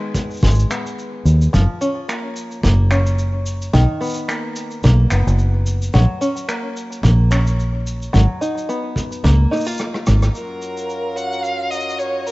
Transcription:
Already playing: five-string banjo D#3 G#3 B3
0.14 kick, cabasa
0.31 cabasa
0.34 cabasa
0.37 cabasa
0.40 five-string banjo G#3, kick, cabasa
0.43 fingered electric bass G#1, cabasa
0.47 cabasa
0.51 cabasa
0.55 cabasa
0.59 cabasa
0.70 five-string banjo B3, finger snap, cabasa
0.86 cabasa
0.99 cabasa
1.25 fingered electric bass D#2, cabasa
1.41 cabasa
1.53 fingered electric bass F#1, five-string banjo F3, kick, cabasa
1.81 five-string banjo C#4, cabasa
2.08 five-string banjo A#3, finger snap, cabasa
2.36 cabasa
2.51 cabasa
2.63 fingered electric bass F#1, five-string banjo A#3, kick, cabasa
2.91 five-string banjo C#4, finger snap, cabasa
3.06 cabasa
3.19 cabasa
3.46 cabasa
3.62 cabasa
3.73 fingered electric bass B1, five-string banjo D#3, kick, cabasa
4.01 five-string banjo B3, cabasa
4.04 cabasa
4.06 cabasa
4.09 cabasa
4.14 cabasa
4.17 cabasa
4.28 five-string banjo A#3, finger snap, cabasa
4.56 cabasa
4.71 cabasa
4.83 fingered electric bass B1, five-string banjo A#3, kick, cabasa
5.10 fingered electric bass F#1, five-string banjo B3, finger snap, cabasa
5.27 fingered electric bass F#1, cabasa
5.39 cabasa
5.66 cabasa
5.82 cabasa
5.93 fingered electric bass A#1, five-string banjo F#3, kick, cabasa
6.21 five-string banjo C#4, cabasa
6.37 cabasa
6.48 five-string banjo A#3, finger snap, cabasa
6.77 cabasa
6.92 cabasa
7.03 fingered electric bass A#1, five-string banjo A#3, kick, cabasa
7.31 five-string banjo C#4, finger snap, cabasa
7.47 cabasa
7.60 cabasa
7.87 cabasa
8.02 cabasa
8.13 fingered electric bass G#1, five-string banjo F#3, kick, cabasa
8.41 five-string banjo D#4, cabasa
8.58 cabasa
8.69 five-string banjo B3, cabasa
8.96 kick, cabasa
9.12 cabasa
9.24 fingered electric bass C#2, five-string banjo A#3, kick, cabasa
9.51 five-string banjo D#4, cross-stick, cabasa
9.56 cabasa
9.61 cabasa
9.64 five-string banjo F4, cabasa
9.67 cabasa
9.71 cabasa
9.74 cabasa
9.77 cross-stick, cabasa
9.94 cross-stick
10.06 fingered electric bass G#1, kick, cross-stick, cabasa
10.22 cross-stick, cabasa
10.34 harmonium F#2 F#3 F4 A#4, violin A#4, cabasa
10.62 cabasa
10.77 cabasa
10.89 cabasa
11.16 violin F#5, cabasa
11.33 cabasa
11.43 violin F5, cabasa
11.71 violin D#5, cabasa
11.80 cabasa
11.89 cabasa
11.99 violin C#5, cabasa
12.27 violin A#4, cabasa

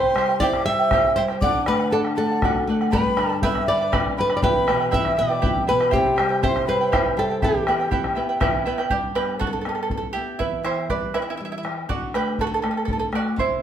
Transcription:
Already playing: nylon-string guitar C3 C5, charango E4 G4 C5 E5 G5, quena C6
0.15 nylon-string guitar G3, charango E4 C5 E5 G5, bombo rim
0.28 charango E4 C5 G5, bombo rim
0.40 nylon-string guitar E4 D5, charango E4 G4 C5 E5 G5, quena D6, bombo rim, bombo low
0.53 bombo rim
0.66 nylon-string guitar G3 E5, charango E4 C5 E5 G5, quena E6
0.79 charango E4 C5 G5
0.91 charango E4 G4 C5 E5 G5, nylon-string guitar G4, bombo rim, bombo low
1.04 bombo rim
1.16 nylon-string guitar G3 C5, charango E4 C5 E5 G5, quena C6
1.28 charango E4 C5 G5, bombo rim
1.41 nylon-string guitar D3 D5, charango A4 D5 F#5, quena D6, bombo low
1.66 nylon-string guitar A3 B4, charango A4 D5 F#5, quena B5, bombo rim
1.79 charango D5 F#5, bombo rim
1.90 nylon-string guitar D4 A4, charango A4 D5 F#5, quena A5, bombo rim
2.05 bombo rim
2.16 nylon-string guitar A3 A4, charango A4 D5 F#5, quena A5, bombo rim
2.30 charango D5 F#5, bombo rim
2.42 nylon-string guitar F#4, charango A4 D5 F#5, bombo rim, bombo low
2.55 bombo rim
2.67 nylon-string guitar A3, charango A4 D5 F#5
2.81 charango D5 F#5, bombo rim
2.91 nylon-string guitar G2 B4, charango G4 B4 D5 G5 B5, quena B5, bombo low
3.17 nylon-string guitar D3, charango B4 D5 G5 B5, bombo rim
3.29 charango B4 D5 B5, bombo rim
3.42 nylon-string guitar B3 E5, charango G4 B4 D5 G5 B5, quena E6, bombo rim, bombo low
3.55 bombo rim
3.67 nylon-string guitar D3 D5, charango B4 D5 G5 B5, quena D6
3.81 charango B4 D5 B5
3.92 nylon-string guitar D4, charango G4 B4 D5 G5 B5, bombo rim, bombo low
4.06 bombo rim
4.17 nylon-string guitar D3 B4, charango B4 D5 G5 B5, quena B5
4.30 charango B4 D5 B5, bombo rim
4.35 nylon-string guitar D5, quena D6
4.41 nylon-string guitar E2 B4, charango E4 G4 B4 E5 G5, quena B5, bombo low
4.67 nylon-string guitar B2, charango E4 B4 E5 G5, bombo rim
4.80 charango E4 B4 G5, bombo rim
4.91 charango E4 G4 B4 E5 G5, nylon-string guitar E5, quena E6, bombo rim, bombo low
4.95 nylon-string guitar E3
5.05 bombo rim
5.16 nylon-string guitar B2 D5, charango E4 B4 E5 G5, quena D6
5.29 charango E4 B4 G5
5.42 nylon-string guitar G3, charango E4 G4 B4 E5 G5, bombo low
5.56 bombo rim
5.67 nylon-string guitar B2 B4, charango E4 B4 E5 G5, quena B5
5.80 charango E4 B4 G5, bombo rim
5.91 charango E4 G4 C5 E5 G5, nylon-string guitar G4, quena G5, bombo low
5.95 nylon-string guitar C3
6.16 nylon-string guitar G3, charango E4 C5 E5 G5, bombo rim
6.29 charango E4 C5 G5, bombo rim
6.42 nylon-string guitar C4 C5, charango E4 G4 C5 E5 G5, quena C6, bombo rim, bombo low
6.56 bombo rim
6.66 nylon-string guitar G3 B4, charango E4 C5 E5 G5, quena B5
6.81 charango E4 C5 G5
6.92 nylon-string guitar E4, charango E4 G4 C5 E5 G5, bombo rim, bombo low
7.06 bombo rim
7.17 nylon-string guitar G3 A4, charango E4 C5 E5 G5, quena A5
7.30 charango E4 C5 G5
7.42 nylon-string guitar E3 G4, charango E4 G4 B4 E5 G5, quena G5, bombo rim, bombo low
7.67 nylon-string guitar B3, charango E4 B4 E5 G5, bombo rim
7.79 charango E4 B4 G5, bombo rim
7.91 nylon-string guitar E3, charango E4 G4 B4 E5 G5, bombo low
8.04 bombo rim
8.15 nylon-string guitar B3, charango E4 B4 E5 G5
8.29 charango E4 B4 G5
8.40 nylon-string guitar E3, charango E4 G4 B4 E5 G5, bombo rim, bombo low
8.65 nylon-string guitar B3, charango E4 B4 E5 G5
8.78 charango E4 B4 G5, bombo rim
8.90 nylon-string guitar G2, charango G4 D5, bombo low
9.15 nylon-string guitar B3, charango G4 B4, bombo rim
9.29 bombo rim
9.39 nylon-string guitar D3, charango F#4 A4, bombo low
9.47 charango A4
9.53 charango A4
9.61 charango A4
9.65 nylon-string guitar B3, charango A4, bombo rim
9.75 charango A4, bombo rim
9.83 charango A4
9.90 nylon-string guitar G2, charango A4, bombo low
9.98 charango A4
10.03 bombo rim
10.13 nylon-string guitar B3, charango E4 G4
10.39 nylon-string guitar E2, charango E4 B4, bombo low
10.63 nylon-string guitar E3, charango E4 C5, bombo rim
10.77 bombo rim
10.89 nylon-string guitar G3, charango B4 D5, bombo low
11.14 nylon-string guitar E3, charango E4 B4, bombo rim
11.22 charango E4
11.27 charango E4, bombo rim
11.37 nylon-string guitar G3, charango E4
11.45 charango E4
11.52 charango E4, bombo rim
11.58 charango E4
11.63 nylon-string guitar E3, bombo rim
11.89 nylon-string guitar D3, charango F#4 D5, bombo low
12.14 nylon-string guitar A3, charango G4 B4, bombo rim
12.26 bombo rim
12.38 nylon-string guitar D3, charango F#4 A4, bombo low
12.47 charango A4
12.54 charango A4
12.62 nylon-string guitar A3, charango A4, bombo rim
12.71 charango A4
12.76 charango A4, bombo rim
12.85 nylon-string guitar D3, charango A4, bombo low
12.93 charango A4
12.99 charango A4, bombo rim
13.12 nylon-string guitar A3, charango F#4 D5, bombo rim
13.36 nylon-string guitar C3, charango E4 C5, bombo low

